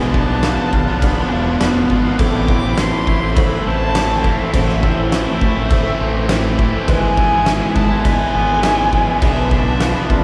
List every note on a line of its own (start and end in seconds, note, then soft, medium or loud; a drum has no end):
0.00 0.57 B1 loud
0.00 0.12 B2 medium
0.00 0.14 F3 loud
0.00 0.15 B3 loud
0.00 2.16 B3 medium
0.00 0.16 D4 loud
0.00 2.17 F4 medium
0.00 0.44 D5 medium
0.00 2.17 D5 medium
0.00 1.03 A5 loud
0.00 2.17 B5 medium
0.14 0.41 B2 medium
0.14 0.30 F3 medium
0.14 0.29 B3 medium
0.14 0.27 D4 medium
0.14 kick medium
0.28 0.43 F3 medium
0.28 0.44 B3 medium
0.28 0.45 D4 medium
0.43 0.87 B2 medium
0.43 0.60 F3 medium
0.43 0.58 B3 medium
0.43 0.56 D4 medium
0.43 1.02 F5 medium
0.43 snare loud
0.43 crash medium
0.57 0.89 F3 medium
0.57 0.87 B3 medium
0.57 0.85 D4 medium
0.73 1.21 B1 medium
0.73 1.90 F4 medium
0.73 muted distorted electric guitar stroke soft
0.73 kick loud
0.87 1.19 F3 medium
0.87 1.17 B3 medium
0.87 1.15 D4 medium
1.02 1.61 B3 medium
1.02 1.32 D5 medium
1.02 1.32 B5 loud
1.02 kick loud
1.02 crash medium
1.17 1.31 F3 medium
1.17 1.32 B3 medium
1.17 1.33 D4 medium
1.31 1.58 E1 medium
1.31 1.59 B2 medium
1.31 1.48 F3 medium
1.31 1.46 B3 medium
1.31 1.44 D4 medium
1.31 1.58 E5 medium
1.31 1.61 F5 medium
1.46 1.60 F3 medium
1.46 1.61 B3 medium
1.46 1.62 D4 medium
1.59 1.88 F1 medium
1.59 1.88 B2 medium
1.59 1.89 F3 loud
1.59 1.90 B3 loud
1.59 2.20 D5 medium
1.59 2.20 F5 medium
1.59 snare loud
1.59 crash medium
1.64 1.91 D4 loud
1.75 2.06 F3 medium
1.75 2.05 B3 medium
1.75 2.03 D4 medium
1.89 2.17 G#1 medium
1.89 2.17 B2 medium
1.89 2.06 F3 medium
1.89 2.04 B3 medium
1.89 2.02 D4 medium
1.89 2.20 F4 medium
1.89 kick medium
2.04 2.19 F3 medium
2.04 2.18 B3 medium
2.04 2.17 D4 medium
2.18 2.91 A1 medium
2.18 2.77 A2 medium
2.18 2.47 E3 medium
2.18 2.49 A3 medium
2.18 2.50 C4 medium
2.18 2.51 E4 loud
2.18 6.84 A4 medium
2.18 2.78 A4 medium
2.18 6.84 C5 medium
2.18 9.18 E5 medium
2.18 4.51 C6 loud
2.18 2.79 D6 loud
2.18 kick loud
2.18 crash medium
2.47 2.78 E3 medium
2.47 2.66 A3 medium
2.47 2.64 C4 medium
2.47 2.62 E4 medium
2.47 kick medium
2.63 2.79 A3 medium
2.63 2.80 C4 medium
2.63 2.81 E4 medium
2.77 3.94 A2 medium
2.77 3.65 E3 loud
2.77 2.95 A3 medium
2.77 2.94 C4 loud
2.77 2.91 E4 medium
2.77 3.37 C6 loud
2.77 snare loud
2.77 crash medium
2.92 3.23 A3 medium
2.92 3.22 C4 medium
2.92 3.20 E4 medium
3.07 3.55 A1 loud
3.07 4.24 E4 medium
3.07 muted distorted electric guitar stroke medium
3.07 kick medium
3.21 3.53 A3 medium
3.21 3.51 C4 medium
3.21 3.50 E4 medium
3.35 3.94 A3 medium
3.35 3.95 C5 medium
3.35 3.66 B5 loud
3.35 kick loud
3.35 crash medium
3.50 3.65 A3 medium
3.50 3.66 C4 medium
3.50 3.68 E4 medium
3.65 4.38 A1 loud
3.65 3.95 E3 medium
3.65 3.83 A3 medium
3.65 3.81 C4 medium
3.65 4.24 A5 loud
3.69 3.80 E4 medium
3.80 3.95 A3 medium
3.80 3.96 C4 medium
3.80 3.97 E4 medium
3.94 4.51 A2 medium
3.94 4.23 E3 loud
3.94 4.23 A3 loud
3.94 4.24 C4 loud
3.94 4.26 E4 loud
3.94 4.54 D5 medium
3.94 snare loud
3.94 crash medium
4.10 4.40 A3 medium
4.10 4.39 C4 medium
4.10 4.39 E4 medium
4.23 4.53 E3 medium
4.23 4.40 A3 medium
4.23 4.39 C4 medium
4.23 4.53 F5 medium
4.23 kick medium
4.27 4.38 E4 medium
4.38 4.53 A3 medium
4.38 4.54 C4 medium
4.38 4.55 E4 medium
4.52 5.26 A1 loud
4.52 5.10 A2 medium
4.52 4.82 E3 loud
4.52 4.82 A3 loud
4.52 4.83 C4 loud
4.52 4.85 E4 loud
4.52 5.12 C5 medium
4.52 5.10 E5 medium
4.52 6.85 D6 loud
4.52 kick loud
4.52 crash medium
4.69 snare soft
4.82 5.12 E3 medium
4.82 4.99 A3 medium
4.82 4.98 C4 medium
4.82 4.96 E4 medium
4.82 kick medium
4.97 5.12 A3 medium
4.97 5.13 C4 medium
4.97 5.14 E4 medium
5.11 5.56 A2 loud
5.11 5.98 E3 medium
5.11 5.29 A3 medium
5.11 5.27 C4 loud
5.11 5.26 E4 loud
5.11 6.54 E5 loud
5.11 5.71 E5 medium
5.11 snare loud
5.11 crash medium
5.26 5.57 A3 medium
5.26 5.56 C4 medium
5.26 5.54 E4 medium
5.41 5.89 A1 loud
5.41 6.57 E4 medium
5.41 muted distorted electric guitar stroke medium
5.41 kick loud
5.55 5.87 A3 medium
5.55 5.85 C4 medium
5.55 5.83 E4 medium
5.70 6.28 A3 medium
5.70 6.00 C5 medium
5.70 kick loud
5.70 crash medium
5.84 5.99 A3 medium
5.84 6.00 C4 medium
5.84 6.01 E4 medium
5.99 6.72 A1 loud
5.99 6.28 E3 medium
5.99 6.16 A3 medium
5.99 6.14 C4 medium
5.99 6.13 E4 medium
5.99 6.30 E5 medium
6.14 6.29 A3 medium
6.14 6.30 C4 medium
6.14 6.31 E4 medium
6.28 6.86 A2 loud
6.28 6.57 E3 loud
6.28 6.58 A3 loud
6.28 6.59 C4 loud
6.28 6.60 E4 loud
6.28 6.88 C5 medium
6.28 snare loud
6.28 crash medium
6.44 6.74 A3 medium
6.44 6.73 C4 medium
6.44 6.71 E4 medium
6.58 6.86 E3 loud
6.58 6.75 A3 medium
6.58 6.73 C4 medium
6.58 6.71 E4 medium
6.58 kick medium
6.72 6.87 A3 medium
6.72 6.87 C4 medium
6.72 6.86 E4 medium
6.86 7.60 G#1 loud
6.86 7.44 G#2 loud
6.86 7.15 E3 medium
6.86 7.16 G#3 medium
6.86 7.18 B3 loud
6.86 7.18 E4 loud
6.86 9.20 G#4 medium
6.86 7.47 B4 loud
6.86 10.24 B4 medium
6.86 7.77 G#5 loud
6.86 10.24 B5 loud
6.86 kick loud
6.86 crash medium
7.16 7.44 E3 medium
7.16 7.33 G#3 medium
7.16 7.33 B3 medium
7.16 7.30 E4 medium
7.16 kick medium
7.31 7.46 G#3 medium
7.31 7.47 B3 medium
7.31 7.47 E4 medium
7.45 7.90 G#2 medium
7.45 7.90 E3 loud
7.45 7.62 G#3 medium
7.45 7.61 B3 loud
7.45 7.59 E4 loud
7.45 snare loud
7.45 crash medium
7.60 7.91 G#3 medium
7.60 7.89 B3 medium
7.60 7.87 E4 medium
7.75 8.24 G#1 medium
7.75 8.91 E4 medium
7.75 8.07 A5 loud
7.75 muted distorted electric guitar stroke medium
7.75 kick loud
7.89 8.20 G#3 medium
7.89 8.19 B3 medium
7.89 8.17 E4 medium
8.05 8.63 G#3 medium
8.05 8.63 D5 medium
8.05 9.25 G#5 loud
8.05 kick loud
8.05 crash medium
8.18 8.32 G#3 medium
8.18 8.34 B3 medium
8.18 8.35 E4 medium
8.32 9.06 G#1 medium
8.32 8.62 E3 medium
8.32 8.49 G#3 medium
8.32 8.48 B3 medium
8.32 8.46 E4 medium
8.47 8.63 G#3 medium
8.47 8.63 B3 medium
8.47 8.64 E4 medium
8.62 9.19 G#2 loud
8.62 8.90 E3 loud
8.62 8.92 G#3 loud
8.62 8.92 B3 loud
8.62 8.94 E4 loud
8.62 9.22 E5 medium
8.62 snare loud
8.62 crash medium
8.78 9.08 G#3 medium
8.78 9.07 B3 medium
8.78 9.06 E4 medium
8.91 9.20 E3 medium
8.91 9.08 G#3 medium
8.91 9.07 B3 medium
8.91 9.05 E4 medium
8.91 kick medium
9.06 9.21 G#3 medium
9.06 9.21 B3 medium
9.06 9.20 E4 medium
9.21 9.94 B1 loud
9.21 9.48 B2 medium
9.21 9.50 F3 medium
9.21 9.51 B3 loud
9.21 9.52 D4 loud
9.21 10.24 F4 medium
9.21 10.24 D5 medium
9.21 9.81 D5 medium
9.21 10.13 E5 loud
9.21 kick loud
9.21 crash medium
9.49 9.78 B2 medium
9.49 9.67 F3 medium
9.49 9.65 B3 medium
9.49 9.63 D4 medium
9.49 kick medium
9.64 9.80 F3 medium
9.64 9.81 B3 medium
9.64 9.82 D4 medium
9.79 10.24 B2 medium
9.79 9.96 F3 medium
9.79 9.94 B3 loud
9.79 9.93 D4 medium
9.79 10.24 F5 medium
9.79 snare loud
9.79 crash medium
9.94 10.24 F3 medium
9.94 10.24 B3 medium
9.94 10.22 D4 medium
10.10 10.24 B1 loud
10.10 10.24 F4 medium
10.10 10.24 D5 loud
10.10 muted distorted electric guitar stroke medium
10.10 kick medium